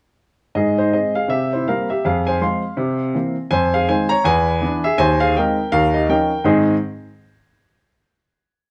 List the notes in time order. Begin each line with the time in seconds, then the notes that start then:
0.55 G#2 G#4 D#5
0.78 D#4 C5
0.93 G#3 C4 G#4 D#5
1.15 G#4 F5
1.28 C3 G4 E5
1.53 E4 C5
1.68 G3 A#3 C4 A#4 F5
1.90 G4 E5
2.05 F2 G#4 F5
2.27 C5 G#5
2.41 F3 G#3 C4 F5 C6
2.77 C3
3.14 E3 A#3 C4
3.51 F2 C5 G#5
3.74 G#4 F5
3.88 D#3 G#3 C4 C5 G#5
4.09 C#5 A#5
4.24 E2 B4 G#5
4.61 E3 B3 D4
4.84 G#4 E5
4.98 D#2 C5 G#5
5.20 G#4 F5
5.37 G#3 C4 D#4 A#4 G5
5.72 D#2 A#4 F5
5.94 G4 D#5
6.09 F3 C#4 D#4 A#4 G5
6.44 G#2 D#3 C4 D#4 G#4 C5 G#5